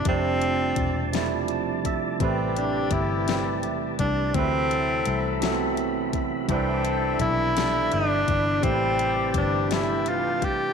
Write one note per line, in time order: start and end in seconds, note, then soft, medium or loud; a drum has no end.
0.00 2.17 D5 medium
0.05 0.73 F1 loud
0.05 0.70 C3 medium
0.05 0.70 F3 medium
0.05 2.19 F3 medium
0.05 0.71 G3 medium
0.05 0.71 A3 medium
0.05 1.10 C4 loud
0.05 4.31 A5 medium
0.05 kick loud
0.05 closed hi-hat medium
0.09 0.72 D4 medium
0.42 closed hi-hat soft
0.76 2.16 E1 medium
0.76 kick medium
0.76 closed hi-hat medium
1.12 1.77 C3 medium
1.12 1.78 F3 medium
1.12 1.78 G3 medium
1.12 1.79 A3 medium
1.12 snare loud
1.12 closed hi-hat medium
1.17 1.79 E4 medium
1.48 1.83 A5 medium
1.48 closed hi-hat soft
1.85 2.19 E5 medium
1.85 kick medium
1.85 closed hi-hat medium
2.19 2.88 A1 medium
2.19 2.84 C3 medium
2.19 2.84 E3 medium
2.19 3.96 E3 medium
2.19 2.85 G3 medium
2.19 2.86 A3 medium
2.19 3.95 C4 medium
2.19 2.60 C4 medium
2.19 4.33 G4 medium
2.19 3.96 G4 medium
2.19 4.32 B4 medium
2.19 kick loud
2.19 closed hi-hat medium
2.24 2.86 B4 medium
2.57 2.94 D4 medium
2.57 closed hi-hat medium
2.91 3.65 G1 medium
2.91 3.63 E4 medium
2.91 kick medium
2.91 closed hi-hat medium
3.26 3.91 C3 medium
3.26 3.92 E3 medium
3.26 3.92 G3 medium
3.26 3.93 A3 medium
3.26 snare loud
3.26 closed hi-hat medium
3.31 3.94 C4 medium
3.63 3.96 E1 medium
3.63 closed hi-hat soft
3.99 4.31 C2 medium
3.99 4.36 D4 loud
3.99 kick medium
3.99 closed hi-hat medium
4.34 5.02 D2 medium
4.34 4.99 C3 medium
4.34 4.99 E3 medium
4.34 6.10 F#3 medium
4.34 5.00 F#3 medium
4.34 5.00 A3 medium
4.34 5.42 C4 loud
4.34 6.10 E4 medium
4.34 6.47 F#4 medium
4.34 6.10 A4 medium
4.34 6.47 E5 medium
4.34 6.47 B5 medium
4.34 kick loud
4.34 closed hi-hat medium
4.39 5.01 B4 medium
4.71 closed hi-hat soft
5.05 6.45 C2 medium
5.05 closed hi-hat medium
5.40 6.05 C3 medium
5.40 6.06 E3 medium
5.40 6.07 F#3 medium
5.40 6.07 A3 medium
5.40 snare loud
5.40 closed hi-hat medium
5.45 5.50 B3 medium
5.52 6.11 C4 medium
5.77 closed hi-hat soft
6.13 kick medium
6.13 closed hi-hat medium
6.48 7.16 C2 loud
6.48 7.13 C3 medium
6.48 8.23 E3 medium
6.48 7.13 E3 medium
6.48 7.14 G3 medium
6.48 7.17 C4 loud
6.48 8.23 D4 medium
6.48 8.61 E4 medium
6.48 8.23 A4 medium
6.48 7.14 B4 medium
6.48 8.61 D5 medium
6.48 10.73 G5 medium
6.48 8.61 B5 medium
6.48 kick loud
6.48 closed hi-hat medium
6.53 7.15 D4 medium
6.85 closed hi-hat medium
7.20 7.87 B1 loud
7.20 7.94 E4 loud
7.20 kick medium
7.20 closed hi-hat medium
7.55 8.20 E3 medium
7.55 8.21 G3 medium
7.55 8.22 B3 medium
7.55 8.20 C4 medium
7.55 snare loud
7.55 closed hi-hat medium
7.60 8.22 D4 medium
7.92 8.25 G1 medium
7.92 8.65 D4 loud
7.92 closed hi-hat soft
8.28 8.60 G1 medium
8.28 kick medium
8.28 closed hi-hat medium
8.61 9.36 A1 loud
8.61 9.26 C3 medium
8.61 9.27 E3 medium
8.61 10.38 G3 medium
8.61 9.28 G3 medium
8.61 10.38 C4 medium
8.61 9.35 C4 loud
8.61 10.73 G4 medium
8.61 10.38 G4 medium
8.61 10.73 B4 medium
8.61 10.73 A5 medium
8.61 kick loud
8.61 closed hi-hat medium
8.65 9.29 A3 medium
8.65 8.71 A#3 medium
8.73 9.32 B4 medium
8.99 closed hi-hat medium
9.34 10.73 G1 medium
9.34 9.74 D4 medium
9.34 kick medium
9.34 closed hi-hat medium
9.68 10.34 C3 medium
9.68 10.34 E3 medium
9.68 10.35 G3 medium
9.68 10.36 A3 medium
9.68 snare loud
9.68 closed hi-hat medium
9.73 10.36 D4 medium
9.73 10.10 E4 medium
10.06 10.46 F4 loud
10.06 closed hi-hat soft
10.42 10.73 G4 loud
10.42 kick medium
10.42 closed hi-hat medium